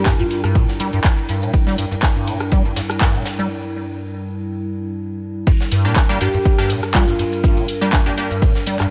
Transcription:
Already playing: G2 G3 D4 E4 A#4 G5
0.06 G2, kick, snare, clap, ride, shaker
0.19 G2 F4, ride, shaker
0.30 F4, open hi-hat, ride
0.44 G2, cross-stick, shaker
0.55 A#2, kick, ride, shaker
0.68 snare, shaker
0.79 G3, open hi-hat, ride
0.93 G2, ride, shaker
1.04 G2, kick, snare, clap, ride, shaker
1.18 shaker
1.29 G2, open hi-hat, ride
1.42 A#2, shaker
1.54 kick, ride, shaker
1.67 G3, snare, shaker
1.78 G2, open hi-hat, ride
1.91 G2, shaker
2.03 kick, snare, clap, ride, shaker
2.16 G2, shaker
2.27 A#2, open hi-hat, ride
2.40 cross-stick, shaker
2.52 G3, kick, ride, shaker
2.65 G2, shaker
2.76 G2, snare, open hi-hat, ride
2.90 cross-stick, ride, shaker
3.01 G2, kick, snare, clap, ride, shaker
3.14 A#2, shaker
3.25 snare, open hi-hat, ride
3.39 G3, shaker
5.47 G2 G3 D4 A#4, kick, crash, ride, shaker
5.60 snare, shaker
5.71 G2, open hi-hat, ride
5.85 A#2 A#3 D4 G4, shaker
5.96 kick, snare, clap, ride, shaker
6.09 G3 A#3 D4 G4, shaker
6.20 G2 A#3 D4 G4, open hi-hat, ride
6.34 G2, shaker
6.45 kick, ride, shaker
6.58 G2 A#3 D4 G4, cross-stick, shaker
6.69 A#2, open hi-hat, ride
6.83 cross-stick, ride, shaker
6.94 G3 F4, kick, snare, clap, ride, shaker
7.08 G2, shaker
7.19 G2, open hi-hat, ride
7.32 shaker
7.44 G2, kick, ride, shaker
7.57 A#2, ride, shaker
7.68 open hi-hat, ride
7.81 G3 A#3 D4 G4, shaker
7.93 G2, kick, snare, clap, ride, shaker
8.06 G2 A#3 D4 G4, ride, shaker
8.18 A#3 D4 G4, open hi-hat, ride
8.31 G2, shaker
8.42 A#2, kick, ride, shaker
8.55 snare, shaker
8.66 G3, open hi-hat, ride
8.79 G2, cross-stick, clap, ride, shaker

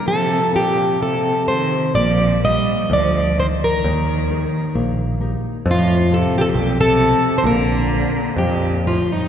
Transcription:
0.06 C3 F3 A4
0.52 A#2 C4 F4 G4 A4
1.00 C3 A4
1.48 D#3 C4 F4 A4 C5
1.95 A#1 F3 A#3 D5
2.42 G3 A#4 C5 D#5 F5
2.90 D2 F3 D5
3.38 D#3 A#4 C5 D5
3.61 D#3 A#4
3.84 D#2 D#3
4.30 D#4 G4 A#4
4.75 A#1 A#3
5.20 D#4 G4 A#4
5.66 F2 F3
5.70 A2 F4
6.11 C3 F4 G4 A4
6.37 A#2 C3 G4
6.41 A4
6.49 A#2 G4
6.54 B1 C4
6.80 C3 A4
6.99 F4 G4
7.38 D#3 C5
7.44 A#1 D3 A#3 A#4
7.92 A#4 C5 D5
8.36 F2 A#2 F3 G4
8.85 A2 F4 A#4 C5 D5
9.10 G2 D#4

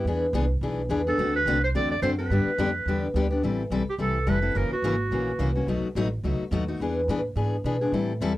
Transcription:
0.05 E2 E3 B3 D4 G#4
0.33 C2 E3 B3 D4 G#4
0.61 B1 E3 B3 D4 G#4
0.89 E2 E3 B3 D4 G#4
1.07 B3 D4 G#4 A4
1.18 D2 D3 A3 C4 F#4 A4
1.36 B4
1.46 C2 D3 A3 C4 F#4 A4
1.64 C5
1.75 E2 D3 A3 C4 F#4 A4 D5
1.92 D5
2.02 F#2 D3 A3 C4 F#4 A4 C5
2.18 C4 F#4 A4 B4
2.30 G2 D3 G3 B3 D4 G4
2.46 muted upright bass stroke
2.58 F2 D3 G3 B3 D4 G4
2.86 E2 D3 G3 B3 D4 G4
3.14 D2 D3 G3 B3 D4 G4
3.31 B3 D4 G4
3.43 A1 E3 G3 C4 E4 A4
3.70 B1 E3 G3 C4 E4 A4
3.87 G4, muted upright bass stroke
3.98 C2 E3 G3 C4 E4 A4
4.27 F1 E3 G3 C4 E4 A4 B4
4.42 C4 E4 A4
4.55 F#1 C#3 E3 A#3 C#4 F#4 A#4
4.70 F#4, muted upright bass stroke
4.82 G#1 C#3 E3 A#3 C#4 F#4
5.11 A#1 C#3 E3 A#3 C#4 F#4
5.39 C2 C#3 E3 A#3 C#4 F#4
5.55 A#3 C#4 F#4
5.67 B1 B2 F#3 A3 D#4 F#4
5.82 muted upright bass stroke
5.95 A1 B2 F#3 A3 D#4 F#4
6.23 C#2 B2 F#3 A3 D#4 F#4
6.40 muted upright bass stroke
6.51 D#2 B2 F#3 A3 D#4 F#4
6.68 A3 D#4 F#4
6.80 E2 E3 B3 D4 G#4
7.08 A2 E3 B3 D4 G#4
7.36 G#2 E3 B3 D4 G#4
7.64 B2 E3 B3 D4 G#4
7.81 B3 D4 G#4
7.92 A2 E3 G3 C4 E4 A4
8.21 E2 E3 G3 C4 E4 A4

